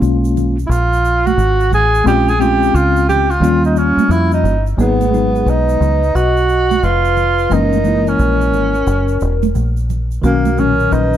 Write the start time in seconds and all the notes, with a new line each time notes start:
Already playing: G#3 A#3 C#4 F4
0.02 B1, shaker
0.25 shaker
0.37 low conga, shaker
0.59 shaker
0.67 A#1 E4 F4
0.72 shaker
0.93 shaker
1.05 shaker
1.26 F#4, high conga, shaker
1.37 G#1, shaker
1.60 shaker
1.71 A1 G#4, low conga, shaker
1.95 shaker
2.04 A#1 G#3 C4 C#4 F4 G4, shaker
2.28 G#4, shaker
2.39 G#3 C4 C#4 F4 G4, high conga, shaker
2.63 shaker
2.74 C#2 F4, shaker
2.96 shaker
3.09 G4, low conga, shaker
3.30 F4, shaker
3.40 D#2 G3 A#3 C#4 F4, low conga, shaker
3.64 D#4, shaker
3.76 C#4, shaker
3.97 muted fingered electric bass stroke, high conga, shaker
4.09 F2 E4, shaker
4.32 D#4, shaker
4.43 G1, low conga, shaker
4.67 shaker
4.77 G#1 F#3 A#3 B3 D#4 G#4, shaker
5.01 high conga, shaker
5.11 F#3 G#3 B3 D#4, high conga, shaker
5.35 shaker
5.46 B1 D#4 B4, shaker
5.69 shaker
5.80 C#2, low conga, shaker
6.03 shaker
6.15 B1 F#4 D#5, shaker
6.37 shaker
6.49 shaker
6.71 high conga, shaker
6.83 F1 F4 B4, shaker
7.05 shaker
7.17 low conga, shaker
7.39 shaker
7.50 F#1 E3 G#3 A#3 C#4 D#4 A#4, shaker
7.73 high conga, shaker
7.84 E3 G#3 A#3 E4, high conga, shaker
8.07 C#4 A#4, shaker
8.19 A#1, shaker
8.41 shaker
8.53 G#1, low conga, shaker
8.75 shaker
8.87 F#1, shaker
9.08 shaker
9.20 E1, shaker
9.43 high conga, shaker
9.55 A#1, shaker
9.77 shaker
9.90 low conga, shaker
10.11 shaker
10.22 B1 D#3 F#3 A#3 C#4 F#4, shaker
10.45 high conga, shaker
10.57 A#2 D#3 F#3 C#4 A#4, high conga, shaker
10.80 shaker
10.92 A#1 D#4 B4, shaker
11.14 shaker